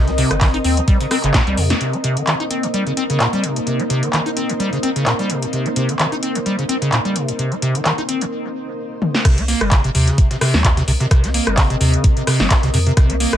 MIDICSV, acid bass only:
0, 0, Header, 1, 2, 480
1, 0, Start_track
1, 0, Key_signature, -3, "minor"
1, 0, Tempo, 465116
1, 1866, Time_signature, 4, 2, 24, 8
1, 13798, End_track
2, 0, Start_track
2, 0, Title_t, "Acid bass"
2, 0, Program_c, 0, 38
2, 75, Note_on_c, 0, 60, 102
2, 112, Note_off_c, 0, 60, 0
2, 184, Note_on_c, 0, 48, 99
2, 316, Note_on_c, 0, 51, 77
2, 331, Note_off_c, 0, 48, 0
2, 376, Note_off_c, 0, 51, 0
2, 424, Note_on_c, 0, 51, 101
2, 497, Note_off_c, 0, 51, 0
2, 557, Note_on_c, 0, 63, 98
2, 593, Note_off_c, 0, 63, 0
2, 665, Note_on_c, 0, 60, 78
2, 797, Note_on_c, 0, 46, 108
2, 813, Note_off_c, 0, 60, 0
2, 833, Note_off_c, 0, 46, 0
2, 906, Note_on_c, 0, 55, 102
2, 1014, Note_off_c, 0, 55, 0
2, 1038, Note_on_c, 0, 49, 77
2, 1097, Note_off_c, 0, 49, 0
2, 1146, Note_on_c, 0, 60, 101
2, 1218, Note_off_c, 0, 60, 0
2, 1277, Note_on_c, 0, 49, 98
2, 1367, Note_off_c, 0, 49, 0
2, 1386, Note_on_c, 0, 46, 107
2, 1459, Note_off_c, 0, 46, 0
2, 1516, Note_on_c, 0, 55, 104
2, 1625, Note_on_c, 0, 48, 77
2, 1641, Note_off_c, 0, 55, 0
2, 1757, Note_on_c, 0, 46, 101
2, 1773, Note_off_c, 0, 48, 0
2, 1793, Note_off_c, 0, 46, 0
2, 1865, Note_on_c, 0, 48, 79
2, 1997, Note_on_c, 0, 60, 98
2, 2013, Note_off_c, 0, 48, 0
2, 2033, Note_off_c, 0, 60, 0
2, 2105, Note_on_c, 0, 48, 96
2, 2237, Note_on_c, 0, 51, 74
2, 2252, Note_off_c, 0, 48, 0
2, 2297, Note_off_c, 0, 51, 0
2, 2345, Note_on_c, 0, 51, 94
2, 2418, Note_off_c, 0, 51, 0
2, 2477, Note_on_c, 0, 63, 92
2, 2513, Note_off_c, 0, 63, 0
2, 2585, Note_on_c, 0, 60, 72
2, 2716, Note_on_c, 0, 46, 98
2, 2732, Note_off_c, 0, 60, 0
2, 2753, Note_off_c, 0, 46, 0
2, 2825, Note_on_c, 0, 55, 93
2, 2934, Note_off_c, 0, 55, 0
2, 2957, Note_on_c, 0, 49, 77
2, 3017, Note_off_c, 0, 49, 0
2, 3066, Note_on_c, 0, 60, 95
2, 3138, Note_off_c, 0, 60, 0
2, 3197, Note_on_c, 0, 49, 99
2, 3287, Note_off_c, 0, 49, 0
2, 3304, Note_on_c, 0, 46, 100
2, 3378, Note_off_c, 0, 46, 0
2, 3435, Note_on_c, 0, 55, 97
2, 3545, Note_on_c, 0, 48, 73
2, 3560, Note_off_c, 0, 55, 0
2, 3676, Note_on_c, 0, 46, 96
2, 3691, Note_off_c, 0, 48, 0
2, 3713, Note_off_c, 0, 46, 0
2, 3784, Note_on_c, 0, 48, 78
2, 3915, Note_on_c, 0, 60, 99
2, 3930, Note_off_c, 0, 48, 0
2, 3952, Note_off_c, 0, 60, 0
2, 4024, Note_on_c, 0, 48, 96
2, 4156, Note_on_c, 0, 51, 75
2, 4172, Note_off_c, 0, 48, 0
2, 4217, Note_off_c, 0, 51, 0
2, 4265, Note_on_c, 0, 51, 97
2, 4338, Note_off_c, 0, 51, 0
2, 4397, Note_on_c, 0, 63, 93
2, 4433, Note_off_c, 0, 63, 0
2, 4505, Note_on_c, 0, 60, 74
2, 4636, Note_on_c, 0, 46, 97
2, 4651, Note_off_c, 0, 60, 0
2, 4673, Note_off_c, 0, 46, 0
2, 4743, Note_on_c, 0, 55, 100
2, 4853, Note_off_c, 0, 55, 0
2, 4875, Note_on_c, 0, 49, 77
2, 4936, Note_off_c, 0, 49, 0
2, 4985, Note_on_c, 0, 60, 98
2, 5058, Note_off_c, 0, 60, 0
2, 5118, Note_on_c, 0, 49, 95
2, 5207, Note_off_c, 0, 49, 0
2, 5226, Note_on_c, 0, 46, 101
2, 5298, Note_off_c, 0, 46, 0
2, 5358, Note_on_c, 0, 55, 92
2, 5466, Note_on_c, 0, 48, 71
2, 5482, Note_off_c, 0, 55, 0
2, 5597, Note_on_c, 0, 46, 99
2, 5613, Note_off_c, 0, 48, 0
2, 5633, Note_off_c, 0, 46, 0
2, 5707, Note_on_c, 0, 48, 79
2, 5838, Note_on_c, 0, 60, 99
2, 5854, Note_off_c, 0, 48, 0
2, 5874, Note_off_c, 0, 60, 0
2, 5947, Note_on_c, 0, 48, 93
2, 6078, Note_on_c, 0, 51, 78
2, 6094, Note_off_c, 0, 48, 0
2, 6138, Note_off_c, 0, 51, 0
2, 6186, Note_on_c, 0, 51, 97
2, 6259, Note_off_c, 0, 51, 0
2, 6318, Note_on_c, 0, 63, 94
2, 6354, Note_off_c, 0, 63, 0
2, 6426, Note_on_c, 0, 60, 77
2, 6557, Note_on_c, 0, 46, 98
2, 6572, Note_off_c, 0, 60, 0
2, 6593, Note_off_c, 0, 46, 0
2, 6666, Note_on_c, 0, 55, 93
2, 6774, Note_off_c, 0, 55, 0
2, 6796, Note_on_c, 0, 49, 78
2, 6857, Note_off_c, 0, 49, 0
2, 6903, Note_on_c, 0, 60, 97
2, 6977, Note_off_c, 0, 60, 0
2, 7036, Note_on_c, 0, 49, 100
2, 7126, Note_off_c, 0, 49, 0
2, 7145, Note_on_c, 0, 46, 97
2, 7218, Note_off_c, 0, 46, 0
2, 7276, Note_on_c, 0, 55, 98
2, 7384, Note_on_c, 0, 48, 75
2, 7400, Note_off_c, 0, 55, 0
2, 7517, Note_on_c, 0, 46, 99
2, 7532, Note_off_c, 0, 48, 0
2, 7553, Note_off_c, 0, 46, 0
2, 7625, Note_on_c, 0, 48, 81
2, 7757, Note_on_c, 0, 60, 100
2, 7773, Note_off_c, 0, 48, 0
2, 7793, Note_off_c, 0, 60, 0
2, 7866, Note_on_c, 0, 48, 98
2, 7996, Note_on_c, 0, 51, 74
2, 8012, Note_off_c, 0, 48, 0
2, 8057, Note_off_c, 0, 51, 0
2, 8106, Note_on_c, 0, 51, 96
2, 8178, Note_off_c, 0, 51, 0
2, 8238, Note_on_c, 0, 63, 92
2, 8273, Note_off_c, 0, 63, 0
2, 8345, Note_on_c, 0, 60, 72
2, 8477, Note_on_c, 0, 46, 98
2, 8493, Note_off_c, 0, 60, 0
2, 8513, Note_off_c, 0, 46, 0
2, 9544, Note_on_c, 0, 48, 82
2, 9677, Note_on_c, 0, 60, 78
2, 9692, Note_off_c, 0, 48, 0
2, 9737, Note_off_c, 0, 60, 0
2, 9785, Note_on_c, 0, 58, 74
2, 9916, Note_on_c, 0, 55, 79
2, 9932, Note_off_c, 0, 58, 0
2, 10025, Note_on_c, 0, 48, 100
2, 10041, Note_off_c, 0, 55, 0
2, 10134, Note_off_c, 0, 48, 0
2, 10157, Note_on_c, 0, 48, 101
2, 10217, Note_off_c, 0, 48, 0
2, 10265, Note_on_c, 0, 48, 102
2, 10398, Note_on_c, 0, 49, 101
2, 10413, Note_off_c, 0, 48, 0
2, 10506, Note_on_c, 0, 48, 84
2, 10522, Note_off_c, 0, 49, 0
2, 10615, Note_off_c, 0, 48, 0
2, 10638, Note_on_c, 0, 48, 80
2, 10698, Note_off_c, 0, 48, 0
2, 10745, Note_on_c, 0, 48, 101
2, 10876, Note_on_c, 0, 55, 75
2, 10891, Note_off_c, 0, 48, 0
2, 10966, Note_off_c, 0, 55, 0
2, 10985, Note_on_c, 0, 46, 83
2, 11029, Note_off_c, 0, 46, 0
2, 11116, Note_on_c, 0, 48, 100
2, 11177, Note_off_c, 0, 48, 0
2, 11224, Note_on_c, 0, 48, 101
2, 11268, Note_off_c, 0, 48, 0
2, 11356, Note_on_c, 0, 48, 103
2, 11416, Note_off_c, 0, 48, 0
2, 11465, Note_on_c, 0, 48, 84
2, 11595, Note_on_c, 0, 60, 80
2, 11611, Note_off_c, 0, 48, 0
2, 11656, Note_off_c, 0, 60, 0
2, 11704, Note_on_c, 0, 58, 76
2, 11836, Note_on_c, 0, 55, 78
2, 11852, Note_off_c, 0, 58, 0
2, 11944, Note_on_c, 0, 48, 102
2, 11960, Note_off_c, 0, 55, 0
2, 12054, Note_off_c, 0, 48, 0
2, 12075, Note_on_c, 0, 48, 98
2, 12136, Note_off_c, 0, 48, 0
2, 12183, Note_on_c, 0, 48, 106
2, 12315, Note_on_c, 0, 49, 105
2, 12330, Note_off_c, 0, 48, 0
2, 12424, Note_on_c, 0, 48, 84
2, 12440, Note_off_c, 0, 49, 0
2, 12534, Note_off_c, 0, 48, 0
2, 12556, Note_on_c, 0, 48, 78
2, 12617, Note_off_c, 0, 48, 0
2, 12664, Note_on_c, 0, 48, 105
2, 12796, Note_on_c, 0, 55, 76
2, 12811, Note_off_c, 0, 48, 0
2, 12886, Note_off_c, 0, 55, 0
2, 12905, Note_on_c, 0, 46, 87
2, 12949, Note_off_c, 0, 46, 0
2, 13036, Note_on_c, 0, 48, 104
2, 13097, Note_off_c, 0, 48, 0
2, 13144, Note_on_c, 0, 48, 103
2, 13189, Note_off_c, 0, 48, 0
2, 13276, Note_on_c, 0, 48, 106
2, 13337, Note_off_c, 0, 48, 0
2, 13384, Note_on_c, 0, 48, 83
2, 13515, Note_on_c, 0, 60, 81
2, 13531, Note_off_c, 0, 48, 0
2, 13576, Note_off_c, 0, 60, 0
2, 13624, Note_on_c, 0, 58, 77
2, 13755, Note_on_c, 0, 55, 81
2, 13771, Note_off_c, 0, 58, 0
2, 13798, Note_off_c, 0, 55, 0
2, 13798, End_track
0, 0, End_of_file